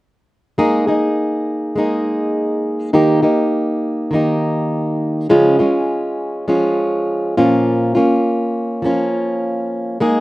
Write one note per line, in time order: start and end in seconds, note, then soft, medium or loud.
0.58 0.87 G#3 medium
0.58 0.88 A#3 medium
0.58 0.87 D#4 medium
0.58 0.86 G#4 medium
0.87 1.77 A#3 soft
0.87 1.78 D#4 soft
0.87 1.76 G#4 soft
1.76 2.93 G#3 soft
1.76 2.93 A#3 medium
1.76 2.93 D#4 soft
1.76 2.94 G#4 medium
2.93 3.23 D#3 medium
2.93 3.23 A#3 medium
2.93 3.22 D#4 medium
2.93 3.21 G4 medium
3.22 4.12 A#3 soft
3.22 4.12 D#4 soft
3.22 4.11 G4 soft
4.11 5.29 D#3 soft
4.11 5.30 A#3 medium
4.11 5.30 D#4 medium
4.15 5.30 G4 medium
5.29 5.59 C#3 medium
5.29 5.60 F3 medium
5.29 5.60 G#3 medium
5.29 5.59 C#4 medium
5.29 5.58 F4 medium
5.59 6.47 G#3 soft
5.59 6.48 C#4 soft
5.59 6.49 F4 medium
6.48 7.38 F3 soft
6.48 7.37 G#3 medium
6.48 7.37 C#4 medium
6.48 7.37 F4 medium
7.37 7.97 A#2 medium
7.37 7.97 F3 soft
7.37 7.96 A#3 medium
7.37 7.95 C#4 medium
7.37 7.94 F4 medium
7.95 8.84 A#3 soft
7.95 8.84 C#4 soft
7.95 8.84 F4 medium
8.82 10.00 F3 medium
8.82 10.01 A#3 medium
8.82 10.01 C#4 medium
8.86 10.02 F4 medium
10.00 10.20 G#3 medium
10.00 10.20 A#3 medium
10.00 10.20 D#4 medium
10.00 10.20 G#4 medium